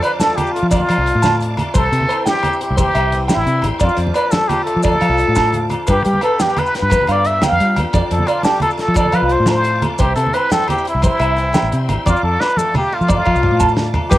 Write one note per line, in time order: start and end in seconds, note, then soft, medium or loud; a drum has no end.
0.00 0.69 F2 medium
0.00 0.88 F3 medium
0.00 1.05 D4 medium
0.00 0.11 B4 medium
0.00 0.12 D5 medium
0.00 1.71 F5 medium
0.00 1.74 A5 medium
0.00 1.74 D6 medium
0.00 closed hi-hat medium
0.00 low agogo medium
0.20 0.55 A3 medium
0.20 0.38 A4 medium
0.20 0.29 A5 medium
0.20 snare medium
0.20 closed hi-hat medium
0.20 high conga loud
0.20 low conga soft
0.20 maracas medium
0.28 low conga soft
0.37 1.73 F4 medium
0.37 0.52 G4 medium
0.37 closed hi-hat medium
0.37 low conga medium
0.37 low agogo medium
0.47 maracas soft
0.53 1.24 A3 medium
0.53 0.68 F4 medium
0.53 closed hi-hat medium
0.62 0.82 F3 medium
0.69 1.72 F2 medium
0.69 1.52 F4 medium
0.69 0.80 D5 medium
0.69 kick medium
0.69 high conga medium
0.69 low agogo medium
0.69 maracas medium
0.73 closed hi-hat medium
0.79 low conga medium
0.89 1.73 F3 medium
0.89 0.96 F3 medium
0.89 closed hi-hat medium
0.89 low agogo medium
0.98 1.11 C2 medium
1.06 1.40 D4 medium
1.06 closed hi-hat soft
1.06 low conga soft
1.15 1.61 A2 medium
1.22 1.32 A5 medium
1.22 snare medium
1.22 closed hi-hat medium
1.22 high conga medium
1.22 low conga medium
1.22 low agogo medium
1.22 maracas medium
1.40 1.73 D4 soft
1.40 closed hi-hat medium
1.40 low conga soft
1.40 maracas soft
1.57 1.73 A3 medium
1.57 closed hi-hat soft
1.57 low conga medium
1.57 low agogo medium
1.67 low conga soft
1.74 1.88 C2 medium
1.74 1.93 C3 medium
1.74 2.29 A4 medium
1.74 1.83 C5 medium
1.74 3.79 E5 medium
1.74 3.79 G5 medium
1.74 3.79 C6 medium
1.74 kick loud
1.74 closed hi-hat medium
1.74 high conga medium
1.74 low agogo medium
1.74 maracas medium
1.92 2.05 C3 medium
1.92 2.95 E3 medium
1.92 closed hi-hat medium
1.92 maracas soft
2.00 low conga medium
2.09 3.13 C4 medium
2.09 2.18 C5 medium
2.09 closed hi-hat soft
2.09 low agogo medium
2.26 2.60 G3 medium
2.26 2.61 G4 medium
2.26 2.35 G5 medium
2.26 snare medium
2.26 closed hi-hat medium
2.26 high conga medium
2.26 low conga soft
2.26 maracas medium
2.35 low conga soft
2.43 3.82 E4 medium
2.43 closed hi-hat soft
2.43 low conga medium
2.43 low agogo medium
2.53 maracas soft
2.61 3.29 G3 medium
2.61 2.78 G4 medium
2.61 closed hi-hat soft
2.71 2.83 C2 medium
2.77 2.96 C3 medium
2.77 3.26 G4 medium
2.77 2.87 C5 medium
2.77 kick medium
2.77 closed hi-hat medium
2.77 high conga medium
2.77 low agogo medium
2.77 maracas medium
2.86 low conga medium
2.95 3.28 C2 medium
2.95 3.80 E3 medium
2.95 3.04 E5 medium
2.95 closed hi-hat medium
2.95 low agogo medium
3.12 3.47 C4 medium
3.12 closed hi-hat soft
3.12 low conga soft
3.28 3.63 G3 medium
3.28 3.38 G5 medium
3.28 snare medium
3.28 closed hi-hat medium
3.28 high conga medium
3.28 low conga medium
3.28 low agogo medium
3.28 maracas medium
3.32 3.67 E4 medium
3.37 3.44 A1 medium
3.46 3.64 C3 loud
3.46 3.80 C4 medium
3.46 closed hi-hat soft
3.46 maracas soft
3.62 3.70 A1 medium
3.62 3.81 G3 medium
3.62 closed hi-hat soft
3.62 low conga medium
3.62 low agogo medium
3.73 low conga soft
3.78 4.83 F2 medium
3.78 3.88 F2 medium
3.78 3.98 F4 medium
3.78 3.90 D5 medium
3.78 9.95 F5 medium
3.78 5.84 A5 medium
3.78 5.84 D6 medium
3.78 kick loud
3.78 closed hi-hat medium
3.78 high conga medium
3.78 low agogo medium
3.78 maracas medium
3.89 maracas soft
3.97 4.11 F2 medium
3.97 5.00 F3 medium
3.97 closed hi-hat medium
4.07 low conga medium
4.14 5.18 D4 medium
4.14 4.33 B4 loud
4.14 4.25 D5 medium
4.14 closed hi-hat medium
4.14 low conga soft
4.14 low agogo medium
4.14 maracas soft
4.31 4.49 A4 medium
4.31 4.42 A5 medium
4.31 muted steel-string acoustic guitar stroke medium
4.31 snare medium
4.31 closed hi-hat medium
4.31 high conga medium
4.31 maracas medium
4.48 5.92 F4 medium
4.48 4.64 G4 medium
4.48 closed hi-hat medium
4.48 low conga medium
4.48 low agogo medium
4.64 5.85 A3 medium
4.64 4.82 A4 medium
4.64 closed hi-hat soft
4.75 4.96 F3 medium
4.75 low conga soft
4.83 5.52 F2 medium
4.83 5.66 A4 loud
4.83 4.93 D5 medium
4.83 kick medium
4.83 closed hi-hat medium
4.83 high conga medium
4.83 low conga soft
4.83 low agogo medium
4.83 maracas medium
4.93 low conga medium
5.01 5.92 F3 medium
5.01 5.08 F3 medium
5.01 5.11 F5 medium
5.01 closed hi-hat soft
5.01 low conga soft
5.01 low agogo medium
5.09 5.23 C2 medium
5.17 6.24 D4 medium
5.17 closed hi-hat soft
5.17 low conga soft
5.17 maracas soft
5.28 5.74 A2 medium
5.35 5.45 A5 medium
5.35 kick medium
5.35 snare medium
5.35 closed hi-hat medium
5.35 high conga soft
5.35 low agogo medium
5.35 maracas medium
5.52 5.69 E2 medium
5.52 closed hi-hat soft
5.52 low conga medium
5.69 5.87 F2 medium
5.69 closed hi-hat soft
5.69 low conga medium
5.69 low agogo medium
5.87 6.02 G2 medium
5.87 6.91 G2 medium
5.87 6.04 G4 loud
5.87 5.97 B4 medium
5.87 7.93 G5 medium
5.87 7.93 B5 medium
5.87 kick loud
5.87 closed hi-hat medium
5.87 high conga medium
5.87 low agogo medium
5.87 maracas medium
6.05 6.19 G3 medium
6.05 6.21 G4 medium
6.05 muted steel-string acoustic guitar stroke medium
6.05 closed hi-hat medium
6.05 low conga soft
6.05 maracas soft
6.13 low conga medium
6.21 7.26 D4 medium
6.21 6.43 A4 loud
6.21 6.32 B4 medium
6.21 closed hi-hat soft
6.21 low agogo medium
6.40 6.73 B3 medium
6.40 6.60 G4 medium
6.40 6.49 G5 medium
6.40 snare medium
6.40 closed hi-hat medium
6.40 high conga medium
6.40 low conga soft
6.40 maracas medium
6.50 low conga soft
6.57 7.60 F4 medium
6.57 6.75 B4 loud
6.57 closed hi-hat medium
6.57 low conga medium
6.57 low agogo medium
6.66 maracas soft
6.74 7.43 B3 medium
6.74 7.13 B4 medium
6.74 snare soft
6.74 closed hi-hat medium
6.82 6.96 G2 medium
6.90 7.93 G2 medium
6.90 7.01 B4 medium
6.90 kick medium
6.90 closed hi-hat medium
6.90 high conga medium
6.90 low agogo medium
6.90 maracas medium
7.01 low conga medium
7.07 7.41 G2 medium
7.07 8.10 D3 medium
7.07 7.18 F5 medium
7.07 closed hi-hat medium
7.07 low agogo medium
7.12 7.28 D5 loud
7.25 7.93 D4 medium
7.25 7.43 E5 medium
7.25 closed hi-hat medium
7.25 low conga soft
7.42 7.78 B3 medium
7.42 7.52 G5 medium
7.42 snare medium
7.42 closed hi-hat medium
7.42 high conga medium
7.42 low conga medium
7.42 low agogo medium
7.42 maracas medium
7.46 7.80 F5 loud
7.52 7.58 F2 medium
7.60 7.79 G3 medium
7.60 7.93 F4 medium
7.60 closed hi-hat medium
7.60 maracas soft
7.76 7.84 E2 medium
7.76 7.93 B3 medium
7.76 closed hi-hat medium
7.76 low conga medium
7.76 low agogo medium
7.85 low conga soft
7.93 8.93 F2 medium
7.93 8.01 F2 medium
7.93 8.03 D5 medium
7.93 9.99 A5 medium
7.93 9.99 D6 medium
7.93 kick loud
7.93 closed hi-hat medium
7.93 high conga loud
7.93 low agogo medium
7.93 maracas medium
8.02 low conga soft
8.11 8.24 F2 medium
8.11 9.11 F3 medium
8.11 8.29 A4 medium
8.11 closed hi-hat medium
8.11 low conga soft
8.19 low conga medium
8.27 9.29 D4 medium
8.27 8.44 F4 medium
8.27 8.37 D5 medium
8.27 closed hi-hat soft
8.27 low agogo medium
8.43 8.76 A3 medium
8.43 8.61 G4 loud
8.43 8.54 A5 medium
8.43 snare medium
8.43 closed hi-hat medium
8.43 high conga loud
8.43 low conga soft
8.43 maracas medium
8.52 low conga soft
8.60 9.63 F4 medium
8.60 8.70 A4 medium
8.60 closed hi-hat soft
8.60 low conga loud
8.60 low agogo medium
8.69 low conga soft
8.69 maracas soft
8.77 9.46 A3 medium
8.77 8.96 A4 medium
8.77 snare soft
8.77 closed hi-hat soft
8.88 9.08 F3 medium
8.94 9.97 F2 medium
8.94 9.17 A4 loud
8.94 9.06 D5 medium
8.94 kick medium
8.94 closed hi-hat medium
8.94 high conga loud
8.94 low agogo medium
8.94 maracas medium
9.05 low conga medium
9.12 9.97 F3 medium
9.12 9.20 F3 medium
9.12 9.33 B4 loud
9.12 9.23 F5 medium
9.12 closed hi-hat soft
9.12 low agogo medium
9.22 9.36 C2 medium
9.29 9.97 D4 medium
9.29 9.49 C5 medium
9.29 closed hi-hat soft
9.29 low conga soft
9.40 9.86 A2 medium
9.46 9.81 A3 medium
9.46 9.85 C5 medium
9.46 muted clean electric guitar stroke medium
9.46 snare medium
9.46 closed hi-hat medium
9.46 high conga loud
9.46 low conga medium
9.46 low agogo medium
9.46 maracas medium
9.64 9.97 F4 medium
9.64 closed hi-hat soft
9.64 low conga soft
9.64 maracas soft
9.82 9.98 A3 medium
9.82 closed hi-hat medium
9.82 low conga medium
9.82 low agogo medium
9.91 low conga soft
9.98 10.13 C2 medium
9.98 10.17 C3 medium
9.98 10.15 G4 medium
9.98 10.09 C5 medium
9.98 12.05 G5 medium
9.98 12.05 C6 medium
9.98 kick loud
9.98 closed hi-hat medium
9.98 high conga medium
9.98 low agogo medium
9.98 maracas medium
10.03 12.05 E5 medium
10.16 10.30 C3 medium
10.16 11.18 E3 medium
10.16 10.35 A4 medium
10.16 closed hi-hat medium
10.16 low conga soft
10.16 maracas soft
10.26 low conga medium
10.33 11.35 C4 medium
10.33 10.51 B4 medium
10.33 10.43 C5 medium
10.33 closed hi-hat medium
10.33 low agogo medium
10.50 10.84 G3 medium
10.50 10.68 A4 loud
10.50 10.61 G5 medium
10.50 snare medium
10.50 closed hi-hat medium
10.50 high conga medium
10.50 low conga soft
10.50 maracas medium
10.61 low conga soft
10.68 12.07 E4 medium
10.68 10.85 G4 medium
10.68 closed hi-hat medium
10.68 low conga medium
10.68 low agogo medium
10.78 maracas soft
10.85 11.52 G3 medium
10.85 11.03 E4 medium
10.85 closed hi-hat medium
10.95 11.08 C2 medium
11.02 11.20 C3 medium
11.02 11.86 E4 loud
11.02 11.12 C5 medium
11.02 kick medium
11.02 closed hi-hat medium
11.02 high conga loud
11.02 low agogo medium
11.02 maracas medium
11.19 11.53 C2 medium
11.19 12.04 E3 medium
11.19 11.29 E5 medium
11.19 closed hi-hat soft
11.19 low agogo medium
11.36 11.71 C4 medium
11.36 closed hi-hat soft
11.53 11.88 G3 medium
11.53 11.63 G5 medium
11.53 snare medium
11.53 closed hi-hat medium
11.53 high conga loud
11.53 low conga medium
11.53 low agogo medium
11.53 maracas medium
11.63 11.69 A1 medium
11.72 11.91 C3 loud
11.72 12.04 C4 medium
11.72 closed hi-hat medium
11.72 low conga soft
11.72 maracas soft
11.89 11.96 A1 medium
11.89 12.07 G3 medium
11.89 closed hi-hat soft
11.89 low conga medium
11.89 low agogo medium
11.98 low conga soft
12.06 13.07 F2 medium
12.06 12.14 F2 medium
12.06 12.23 F4 medium
12.06 12.15 D5 medium
12.06 14.10 F5 medium
12.06 14.11 A5 medium
12.06 14.11 D6 medium
12.06 kick loud
12.06 high tom medium
12.06 high conga medium
12.06 low agogo medium
12.06 maracas medium
12.16 maracas soft
12.22 12.36 F2 medium
12.22 12.42 A4 medium
12.22 low conga soft
12.40 13.42 D4 medium
12.40 12.59 B4 loud
12.40 muted clean electric guitar stroke medium
12.40 snare medium
12.40 low conga soft
12.40 low agogo medium
12.50 maracas soft
12.57 12.91 A3 medium
12.57 12.75 A4 medium
12.57 high conga loud
12.57 low conga soft
12.57 maracas medium
12.74 13.75 F4 medium
12.74 12.96 G4 medium
12.74 mid tom medium
12.74 low conga medium
12.74 low agogo medium
12.92 13.61 A3 medium
12.92 13.10 F4 medium
12.92 low conga soft
13.01 13.20 F3 medium
13.01 low conga soft
13.01 maracas soft
13.08 14.09 F2 medium
13.08 13.75 F4 medium
13.08 13.18 D5 medium
13.08 kick medium
13.08 mid tom medium
13.08 high conga medium
13.08 low agogo medium
13.08 maracas medium
13.17 low conga medium
13.25 14.09 F3 medium
13.25 13.33 F3 medium
13.25 13.35 F5 medium
13.25 kick medium
13.25 high conga medium
13.25 low agogo medium
13.35 13.48 C2 medium
13.35 maracas soft
13.43 14.10 D4 medium
13.43 mid tom medium
13.43 high conga medium
13.52 13.98 A2 medium
13.60 13.69 A5 medium
13.60 kick medium
13.60 floor tom medium
13.60 high conga medium
13.60 low agogo medium
13.60 maracas medium
13.69 maracas soft
13.76 14.09 F4 medium
13.76 snare medium
13.76 low conga medium
13.94 14.10 A3 medium
13.94 floor tom medium
13.94 low conga medium
13.94 low agogo medium
14.11 14.18 G2 medium
14.11 14.18 G2 loud
14.11 14.18 B3 medium
14.11 14.18 G4 loud
14.11 14.18 B4 loud
14.11 14.18 F5 medium
14.11 14.18 G5 medium
14.11 14.18 B5 medium
14.11 kick loud
14.11 crash loud
14.11 high conga medium
14.11 low agogo medium
14.11 maracas loud